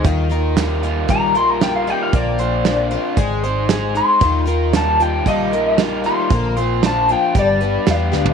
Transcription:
0.04 D#2 D#3 G3 A#3 D#4 F4, kick, closed hi-hat
0.29 A#3 D#4 F4 A#4, closed hi-hat
0.56 G3 A#3 D#4 F4, snare, closed hi-hat
0.83 A#3 D#4 F4, closed hi-hat
1.08 A#1 D#3 G3 A#3 D#4 F4 A#5, kick, closed hi-hat
1.35 A#3 D#4 F4 A#4 C6, closed hi-hat
1.50 A#5
1.61 G3 A#3 D#4 F4 G5, snare, closed hi-hat
1.76 F5
1.87 G3 A#3 D#4 F4 G5, closed hi-hat
2.03 F5
2.12 A#1 A#2 D3 F3 A#3 C4 F4 D5, kick, closed hi-hat
2.38 F3 A#3 C4 F4 C5, closed hi-hat
2.65 F3 A#3 C4 D4 F4, snare, closed hi-hat
2.91 F3 A#3 C4 F4, closed hi-hat
3.17 G#1 G#2 D#3 G#3 C4 D#4 G#4, kick, closed hi-hat
3.43 G#3 C4 D#4 G#4 C5, closed hi-hat
3.69 G#3 C4 D#4, snare, closed hi-hat
3.73 G#4
3.95 G#3 C4 D#4 G#4 C6, closed hi-hat
4.20 D#2 D#3 G3 A#3 D#4 F4, kick, closed hi-hat
4.46 A#3 D#4 F4 A#4, closed hi-hat
4.73 G3 A#3 D#4 F4 A5, snare, closed hi-hat
4.99 A#3 D#4 F4 G5, closed hi-hat
5.26 A#1 D#3 G3 A#3 D#4 F4 D#5, kick, closed hi-hat
5.51 A#3 D#4 F4 A#4, closed hi-hat
5.78 G3 A#3 D#4 F4, snare, closed hi-hat
6.04 G3 D#4 F4 C6, closed hi-hat
6.08 A#3
6.30 A#1 A#2 D3 F3 A#3 C4 F4, kick, closed hi-hat
6.57 A#3 C4 F4 C5, closed hi-hat
6.62 F3
6.82 F3 A#3 C4 D4, snare, closed hi-hat
6.86 F4 A5
7.09 F3 A#3 C4 F4 G5, closed hi-hat
7.35 G1 G2 D3 G3 B3 D4 G4, kick, closed hi-hat
7.39 D5
7.61 G3 B3 D4 G4 B4, closed hi-hat
7.87 E2 G3 B3 D4 G4, snare, closed hi-hat
7.91 F5
8.12 D2 G3 B3 D4 G4, snare
8.26 floor tom

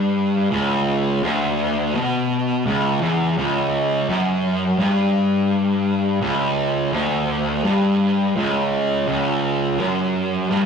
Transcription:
Already playing: G2
0.51 C#2
1.23 D2
1.95 B2
2.66 C#2
3.01 E2
3.37 C#2
4.09 F#2
4.79 G2
6.21 C#2
6.93 D2
7.64 G2
8.36 C#2
9.07 C#2
9.80 F#2
10.51 G2

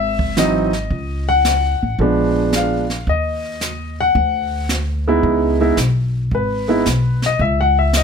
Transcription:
Already playing: G#1 E5
0.19 kick
0.37 E3 F#3 C4 D#4 D#5, snare, hi-hat pedal
0.73 snare
0.91 C#2, brush sweep, kick
1.29 F#5
1.45 snare, hi-hat pedal
1.82 A1
1.98 A#1 F3 G#3 B3 D4, brush sweep, kick
2.53 F5, snare, hi-hat pedal
2.90 snare
3.07 D#2 D#5, brush sweep, kick
3.61 snare, hi-hat pedal
4.01 F#5
4.15 D2, brush sweep, kick
4.69 snare, hi-hat pedal
5.08 G#3 B3 D#4 E4
5.23 C#2, brush sweep, kick
5.60 G#3 B3 D#4 E4
5.77 B1, snare, hi-hat pedal
6.31 G#1 B4, brush sweep, kick
6.68 G#3 B3 D#4 E4
6.86 B1, snare, hi-hat pedal
7.22 D#5, snare
7.39 C#2 E5, brush sweep, kick
7.61 F#5
7.79 E5
7.93 D#5, snare, hi-hat pedal

